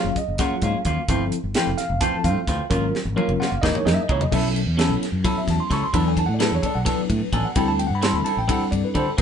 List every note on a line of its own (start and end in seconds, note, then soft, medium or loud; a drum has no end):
0.00 0.21 F#3 medium
0.00 0.21 C#4 medium
0.00 0.21 F4 medium
0.00 0.22 G#4 medium
0.00 0.16 F5 loud
0.04 0.15 F#1 medium
0.16 0.39 D#5 medium
0.16 muted fretless electric bass stroke soft
0.16 kick medium
0.16 closed hi-hat medium
0.28 0.38 F#1 medium
0.38 0.81 F#3 medium
0.38 0.54 F#3 medium
0.38 0.54 A#3 medium
0.38 0.81 C#4 medium
0.38 0.54 C#4 medium
0.38 0.81 F4 soft
0.38 0.54 F4 medium
0.38 0.81 G#4 medium
0.38 0.62 F#5 loud
0.38 kick loud
0.38 snare soft
0.38 closed hi-hat medium
0.51 muted fretless electric bass stroke soft
0.62 0.73 G#2 medium
0.62 0.77 A#3 soft
0.62 0.77 C#4 medium
0.62 0.77 F4 medium
0.62 1.06 F5 medium
0.62 kick medium
0.62 closed hi-hat medium
0.74 muted fretless electric bass stroke soft
0.85 0.96 D#2 loud
0.85 1.00 F#3 medium
0.85 1.00 A#3 medium
0.85 1.00 C#4 medium
0.85 1.00 F4 medium
0.85 kick medium
0.85 closed hi-hat medium
1.08 1.29 G1 loud
1.08 1.23 E3 medium
1.08 1.37 F3 medium
1.08 1.23 A3 medium
1.08 1.37 C4 medium
1.08 1.23 C4 medium
1.08 1.37 E4 medium
1.08 1.23 F4 medium
1.08 1.37 A4 medium
1.08 kick loud
1.08 closed hi-hat medium
1.32 closed hi-hat medium
1.44 1.54 G1 medium
1.54 1.70 E3 medium
1.54 1.83 F3 medium
1.54 1.70 A3 medium
1.54 1.83 C4 medium
1.54 1.70 C4 medium
1.54 1.83 E4 medium
1.54 1.70 F4 medium
1.54 1.83 A4 medium
1.54 1.78 G5 medium
1.54 snare loud
1.54 closed hi-hat medium
1.67 1.77 F1 medium
1.78 2.00 F5 loud
1.78 snare soft
1.78 closed hi-hat medium
1.90 2.00 F1 loud
2.01 2.15 E3 medium
2.01 2.43 F3 medium
2.01 2.16 A3 medium
2.01 2.43 C4 medium
2.01 2.15 C4 medium
2.01 2.43 E4 medium
2.01 2.16 F4 medium
2.01 2.43 A4 medium
2.01 2.23 A5 loud
2.01 kick loud
2.01 closed hi-hat medium
2.13 muted fretless electric bass stroke soft
2.24 2.35 G2 loud
2.24 2.39 A3 medium
2.24 2.39 C4 medium
2.24 2.39 F4 medium
2.24 2.67 F5 medium
2.24 kick medium
2.24 closed hi-hat medium
2.36 muted fretless electric bass stroke soft
2.47 2.58 D2 medium
2.47 2.62 E3 medium
2.47 2.62 A3 medium
2.47 2.62 C4 medium
2.47 2.62 F4 medium
2.47 kick medium
2.47 snare soft
2.47 closed hi-hat medium
2.70 2.91 G#1 loud
2.70 2.98 F#3 medium
2.70 2.84 F#3 medium
2.70 2.85 A#3 medium
2.70 2.98 C#4 medium
2.70 2.85 C#4 medium
2.70 2.98 F4 medium
2.70 2.85 F4 loud
2.70 2.98 A#4 medium
2.70 kick loud
2.70 closed hi-hat medium
2.95 snare medium
3.05 3.16 G#1 medium
3.16 3.44 F#3 medium
3.16 3.31 F#3 medium
3.16 3.31 A#3 medium
3.16 3.44 C#4 medium
3.16 3.31 C#4 medium
3.16 3.44 F4 medium
3.16 3.31 F4 medium
3.16 3.44 A#4 medium
3.16 high tom medium
3.28 3.39 F#1 medium
3.28 mid tom medium
3.40 3.55 A#3 soft
3.40 3.54 C#4 soft
3.40 3.54 F4 medium
3.40 3.51 F#5 medium
3.40 snare medium
3.50 3.62 F#1 medium
3.50 3.62 F5 medium
3.62 3.73 F#1 loud
3.62 3.77 E3 medium
3.62 4.05 G#3 medium
3.62 3.77 A#3 medium
3.62 4.04 D#4 medium
3.62 3.77 D#4 medium
3.62 4.05 E4 medium
3.62 3.77 G#4 medium
3.62 4.05 A#4 medium
3.62 3.74 D#5 loud
3.62 kick loud
3.62 snare medium
3.75 3.86 C#5 medium
3.75 mid tom medium
3.85 3.96 F#2 loud
3.85 4.00 A#3 medium
3.85 4.00 D#4 medium
3.85 4.00 G#4 medium
3.85 3.94 D#5 medium
3.85 snare loud
3.94 4.01 E5 medium
3.94 muted fretless electric bass stroke soft
4.03 4.10 D#5 medium
4.09 4.20 C#2 loud
4.09 4.23 E3 medium
4.09 4.23 A#3 medium
4.09 4.23 D#4 medium
4.09 4.24 G#4 medium
4.09 4.22 C#5 loud
4.09 kick loud
4.21 4.32 D#5 medium
4.21 floor tom medium
4.32 4.63 B1 medium
4.32 4.60 F#3 medium
4.32 4.46 F#3 medium
4.32 4.60 B3 medium
4.32 4.60 C#4 medium
4.32 4.46 C#4 medium
4.32 4.60 E4 medium
4.32 4.46 E4 medium
4.32 4.60 A4 medium
4.32 4.47 A4 medium
4.32 4.46 E5 medium
4.32 kick loud
4.32 crash loud
4.56 ride medium
4.66 4.87 E2 medium
4.77 4.92 F#3 medium
4.77 5.06 F#3 medium
4.77 5.06 B3 medium
4.77 4.92 C#4 medium
4.77 5.06 C#4 medium
4.77 5.06 E4 medium
4.77 4.93 E4 medium
4.77 5.06 A4 medium
4.77 4.93 A4 medium
4.77 snare loud
4.77 ride medium
4.89 5.00 B1 medium
5.03 snare soft
5.03 ride medium
5.12 5.23 F#2 medium
5.24 5.66 F#3 medium
5.24 5.39 F#3 medium
5.24 5.66 B3 medium
5.24 5.66 C#4 medium
5.24 5.39 C#4 medium
5.24 5.66 E4 medium
5.24 5.39 E4 medium
5.24 5.66 F#4 medium
5.24 5.39 A4 medium
5.24 kick loud
5.24 ride medium
5.36 5.48 E5 medium
5.36 muted fretless electric bass stroke soft
5.47 5.58 E2 medium
5.47 5.60 A5 medium
5.47 kick medium
5.47 snare soft
5.47 ride medium
5.58 5.71 C6 medium
5.58 muted fretless electric bass stroke soft
5.70 5.81 C#2 loud
5.70 5.84 F#3 medium
5.70 5.85 C#4 medium
5.70 5.85 E4 medium
5.70 5.85 A4 medium
5.70 5.83 C#6 loud
5.70 kick medium
5.70 snare soft
5.70 ride medium
5.83 5.94 C6 medium
5.93 6.25 E2 medium
5.93 6.08 F#3 medium
5.93 6.22 F#3 medium
5.93 6.08 B3 medium
5.93 6.22 B3 medium
5.93 6.08 D4 medium
5.93 6.22 D4 medium
5.93 6.22 E4 medium
5.93 6.08 A4 medium
5.93 6.22 A4 medium
5.93 6.06 B5 medium
5.93 kick loud
5.93 ride medium
6.08 6.18 G#5 medium
6.17 6.26 A5 loud
6.17 kick medium
6.17 ride medium
6.26 6.50 A2 medium
6.26 6.33 F#5 medium
6.34 6.41 D5 medium
6.39 6.54 F#3 medium
6.39 6.68 F#3 medium
6.39 6.54 B3 medium
6.39 6.68 B3 medium
6.39 6.68 D4 medium
6.39 6.54 D4 medium
6.39 6.68 E4 medium
6.39 6.68 G#4 medium
6.39 6.55 A4 medium
6.39 6.52 B4 medium
6.39 snare loud
6.39 ride medium
6.52 6.62 E2 medium
6.52 6.65 C#5 medium
6.62 6.78 B3 soft
6.62 6.77 D4 soft
6.62 6.77 A4 medium
6.62 6.76 D5 medium
6.62 kick medium
6.62 ride medium
6.75 6.86 B1 medium
6.75 6.82 F#5 medium
6.85 7.00 F#3 medium
6.85 7.28 F#3 medium
6.85 7.00 B3 medium
6.85 7.28 B3 medium
6.85 7.00 D4 medium
6.85 7.28 D4 medium
6.85 7.28 E4 medium
6.85 7.00 A4 medium
6.85 7.28 B4 medium
6.85 kick loud
6.85 snare soft
6.85 ride loud
6.98 muted fretless electric bass stroke soft
7.10 7.20 A2 loud
7.10 kick medium
7.10 ride medium
7.21 muted fretless electric bass stroke soft
7.32 7.43 A1 loud
7.32 7.47 F#3 medium
7.32 7.47 B3 medium
7.32 7.48 D4 medium
7.32 7.48 A4 medium
7.32 7.45 G#5 loud
7.32 kick medium
7.32 ride medium
7.45 7.56 F#5 medium
7.56 7.87 D2 medium
7.56 7.70 G3 medium
7.56 7.84 G3 medium
7.56 7.70 C4 medium
7.56 7.84 C4 medium
7.56 7.84 D4 medium
7.56 7.70 E4 medium
7.56 7.84 E4 medium
7.56 7.84 A4 medium
7.56 7.71 A4 medium
7.56 7.68 G5 medium
7.56 kick loud
7.56 ride medium
7.68 7.79 A5 loud
7.79 7.87 G5 medium
7.79 ride medium
7.87 8.12 G2 medium
7.87 7.95 F#5 medium
7.95 8.03 B5 medium
8.02 8.16 G3 medium
8.02 8.31 G3 medium
8.02 8.17 C4 medium
8.02 8.31 C4 medium
8.02 8.31 D4 medium
8.02 8.31 E4 medium
8.02 8.17 E4 medium
8.02 8.31 A4 medium
8.02 8.17 A4 medium
8.02 8.14 C6 loud
8.02 snare loud
8.02 ride medium
8.13 8.24 D2 medium
8.13 8.26 B5 medium
8.24 8.40 C4 soft
8.24 8.40 E4 soft
8.24 8.40 A4 medium
8.24 8.37 A5 loud
8.24 muted fretless electric bass stroke soft
8.24 ride medium
8.37 8.48 A1 medium
8.37 8.49 G5 medium
8.48 8.63 G3 medium
8.48 8.92 G3 medium
8.48 8.63 C4 medium
8.48 8.91 C4 medium
8.48 8.91 D4 medium
8.48 8.63 E4 medium
8.48 8.91 E4 medium
8.48 8.63 A4 medium
8.48 8.91 A4 medium
8.48 8.73 F#5 medium
8.48 kick loud
8.48 ride medium
8.60 muted fretless electric bass stroke soft
8.71 8.82 G2 medium
8.71 8.83 D5 medium
8.71 kick medium
8.71 ride medium
8.83 8.96 B4 medium
8.83 muted fretless electric bass stroke soft
8.94 9.06 D3 loud
8.94 9.09 G3 medium
8.94 9.09 C4 medium
8.94 9.09 E4 medium
8.94 9.10 A4 medium
8.94 9.08 C5 loud
8.94 kick medium
8.94 ride medium
9.08 9.15 A4 medium
9.17 9.22 A#1 medium
9.17 9.22 F3 medium
9.17 9.22 C4 medium
9.17 9.22 D#4 medium
9.17 9.22 G#4 medium
9.17 kick loud
9.17 ride medium